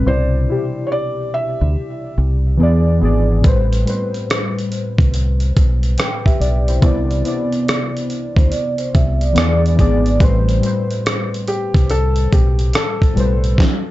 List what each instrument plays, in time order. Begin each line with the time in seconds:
0.04 fingered electric bass C2, synth keys B2 C3 E4, felt piano C5
0.10 synth keys D5
0.46 synth keys B2 C3 E4
0.51 synth keys G4
0.87 felt piano C#5
0.92 felt piano D5
1.34 felt piano E5
1.61 fingered electric bass D2
2.18 fingered electric bass C2
2.57 fingered electric bass E2, synth keys E3 B3
2.61 synth keys G#4 D5
2.99 fingered electric bass G#1, synth keys E3 B3 G#4
3.05 synth keys D5
3.42 fingered electric bass A1, synth keys A2 G3 B4, kick, closed hi-hat
3.48 synth keys C5
3.73 closed hi-hat
3.84 synth keys A2 G3, closed hi-hat
3.88 synth keys B4 C5
4.14 closed hi-hat
4.30 cross-stick, closed hi-hat
4.59 closed hi-hat
4.72 closed hi-hat
4.98 fingered electric bass C2, kick, closed hi-hat
5.14 closed hi-hat
5.40 closed hi-hat
5.57 fingered electric bass B1, kick, closed hi-hat
5.83 closed hi-hat
5.98 synth keys B4 G5, cross-stick, closed hi-hat
6.26 synth keys G4 E5, kick, closed hi-hat
6.40 fingered electric bass B1, synth keys D5, closed hi-hat
6.68 synth keys E4 C5, closed hi-hat
6.80 fingered electric bass C2, synth keys C3 B3 E4, kick, closed hi-hat
6.86 synth keys D5
7.11 closed hi-hat
7.22 synth keys C3 B3 E4, closed hi-hat
7.28 synth keys D5
7.52 closed hi-hat
7.68 cross-stick, closed hi-hat
7.97 closed hi-hat
8.10 closed hi-hat
8.36 fingered electric bass D2, vibraphone C5, kick, closed hi-hat
8.51 vibraphone D5, closed hi-hat
8.78 vibraphone C5, closed hi-hat
8.94 fingered electric bass C2, vibraphone E5, kick, closed hi-hat
9.21 vibraphone D5, closed hi-hat
9.33 fingered electric bass E2, synth keys E3 B3 G#4, closed hi-hat
9.38 synth keys D5, cross-stick
9.66 closed hi-hat
9.75 fingered electric bass G#1, synth keys E3 B3 G#4, kick
9.79 synth keys D5, closed hi-hat
10.06 closed hi-hat
10.18 fingered electric bass A1, synth keys A2 G3 B4, kick, closed hi-hat
10.23 synth keys C5
10.49 closed hi-hat
10.60 synth keys A2 G3, closed hi-hat
10.64 synth keys B4 C5
10.91 closed hi-hat
11.06 cross-stick, closed hi-hat
11.34 closed hi-hat
11.48 felt piano G4, closed hi-hat
11.74 fingered electric bass C2, kick, closed hi-hat
11.90 felt piano A4, closed hi-hat
12.16 closed hi-hat
12.33 fingered electric bass B1, felt piano G4, kick, closed hi-hat
12.59 closed hi-hat
12.73 felt piano A4, cross-stick, closed hi-hat
13.02 kick, closed hi-hat
13.14 fingered electric bass B1, synth keys A2 G3 B4, closed hi-hat
13.19 synth keys C5
13.44 closed hi-hat
13.58 kick, snare